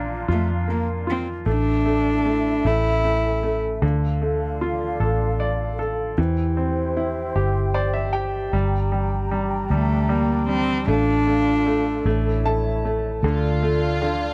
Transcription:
Already playing: A#1 A#2 D4 F4 F5 A#5
0.28 F2 A3 F4
0.68 A#3
1.07 C4 F4
1.46 A1 A3 D4 E4 A4 E5
1.86 A3
2.26 A3
2.65 A1 A3 C#4 E4 A4
3.04 A3
3.43 A3
3.82 D2 D3 D4 F4 A4 F5
4.22 A3
4.61 F4
5.00 A1 A4
5.40 D5
5.79 A4
6.18 E2 E3 E4 G4 C5 G5
6.57 C4
6.97 E4
7.35 G1 G4
7.74 C5 D5
7.94 E5
8.13 G4 G5
8.52 G1 G3 D4 A#5
8.92 G3
9.31 G3
9.70 D2 G3 A3
10.09 G3 A#3
10.48 G3 C4
10.88 A1 A3 D4 F4 A4 F5
11.27 A3
11.67 A3
12.04 A1 A3 E4 C#5 E5
12.45 A3 A5
12.85 A3
13.22 D2 D3 D4 F4 A4 D5
13.63 A3
14.02 D3

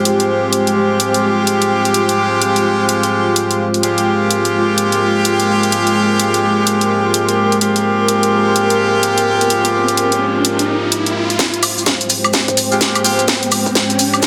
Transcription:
Already playing: G#3 F4 G4 C5
0.05 G#3 C4 F4 G4, closed hi-hat
0.20 closed hi-hat
0.53 closed hi-hat
0.67 closed hi-hat
1.00 closed hi-hat
1.14 closed hi-hat
1.47 closed hi-hat
1.62 closed hi-hat
1.85 closed hi-hat
1.94 closed hi-hat
2.09 closed hi-hat
2.42 closed hi-hat
2.56 closed hi-hat
2.89 closed hi-hat
3.03 closed hi-hat
3.36 closed hi-hat
3.51 closed hi-hat
3.74 closed hi-hat
3.83 G#3 C4 F4 G4 A#4, closed hi-hat
3.98 closed hi-hat
4.31 closed hi-hat
4.45 closed hi-hat
4.78 closed hi-hat
4.92 closed hi-hat
5.25 closed hi-hat
5.40 closed hi-hat
5.63 closed hi-hat
5.72 closed hi-hat
5.87 closed hi-hat
6.20 closed hi-hat
6.34 closed hi-hat
6.67 closed hi-hat
6.81 closed hi-hat
7.14 closed hi-hat
7.29 closed hi-hat
7.52 closed hi-hat
7.61 G#3 C4 F4 G4, closed hi-hat, riser
7.76 closed hi-hat
8.08 closed hi-hat
8.23 closed hi-hat
8.56 closed hi-hat
8.70 closed hi-hat
9.03 closed hi-hat
9.18 closed hi-hat
9.41 closed hi-hat
9.50 closed hi-hat
9.65 closed hi-hat
9.88 closed hi-hat
9.97 closed hi-hat
10.12 closed hi-hat
10.45 closed hi-hat
10.59 closed hi-hat
10.92 closed hi-hat
11.06 closed hi-hat
11.30 closed hi-hat
11.39 G#3 F4 C5 G5, kick, snare, closed hi-hat, riser, maracas
11.54 closed hi-hat
11.63 open hi-hat, high woodblock, maracas
11.78 maracas
11.86 kick, snare, closed hi-hat, maracas
12.01 closed hi-hat, maracas
12.10 open hi-hat, maracas
12.24 high woodblock, maracas
12.33 kick, snare, closed hi-hat, maracas
12.48 kick, closed hi-hat, maracas
12.57 open hi-hat, maracas
12.72 G#3 C4 F4 G4, maracas
12.81 kick, snare, closed hi-hat, maracas
12.95 closed hi-hat, high woodblock, maracas
13.04 G#3 C4 F4 G4, open hi-hat, maracas
13.19 closed hi-hat, maracas
13.28 kick, snare, closed hi-hat, maracas
13.43 closed hi-hat
13.51 open hi-hat, high woodblock, maracas
13.66 kick, maracas
13.75 kick, snare, closed hi-hat, maracas
13.90 closed hi-hat, maracas
13.99 open hi-hat, maracas
14.14 high woodblock, maracas
14.22 kick, snare, closed hi-hat, maracas

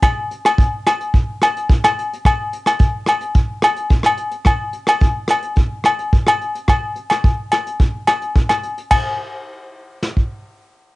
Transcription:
0.03 kick, cross-stick, closed hi-hat, low agogo
0.31 closed hi-hat
0.45 cross-stick, closed hi-hat, low agogo
0.58 kick, closed hi-hat
0.87 cross-stick, closed hi-hat, low agogo
1.01 closed hi-hat
1.14 kick, closed hi-hat
1.42 cross-stick, closed hi-hat, low agogo
1.57 closed hi-hat
1.69 kick, closed hi-hat
1.84 cross-stick, low agogo
1.99 closed hi-hat
2.13 closed hi-hat
2.25 kick, cross-stick, closed hi-hat, low agogo
2.53 closed hi-hat
2.66 cross-stick, closed hi-hat, low agogo
2.79 kick, closed hi-hat
3.06 cross-stick, closed hi-hat, low agogo
3.21 closed hi-hat
3.34 kick, closed hi-hat
3.62 cross-stick, closed hi-hat, low agogo
3.76 closed hi-hat
3.89 kick, closed hi-hat
4.03 cross-stick, low agogo
4.17 closed hi-hat
4.31 closed hi-hat
4.45 kick, cross-stick, closed hi-hat, low agogo
4.73 closed hi-hat
4.87 cross-stick, closed hi-hat, low agogo
5.00 kick, closed hi-hat
5.28 cross-stick, closed hi-hat, low agogo
5.42 closed hi-hat
5.56 kick, closed hi-hat
5.84 cross-stick, closed hi-hat, low agogo
5.99 closed hi-hat
6.12 kick, closed hi-hat
6.27 cross-stick, low agogo
6.41 closed hi-hat
6.55 closed hi-hat
6.68 kick, cross-stick, closed hi-hat, low agogo
6.96 closed hi-hat
7.10 cross-stick, closed hi-hat, low agogo
7.24 kick, closed hi-hat
7.52 cross-stick, closed hi-hat, low agogo
7.67 closed hi-hat
7.80 kick, closed hi-hat
8.07 cross-stick, closed hi-hat, low agogo
8.22 closed hi-hat
8.36 kick, closed hi-hat
8.49 cross-stick, low agogo
8.63 closed hi-hat
8.78 closed hi-hat
8.91 kick, crash, low agogo
10.03 snare
10.17 kick

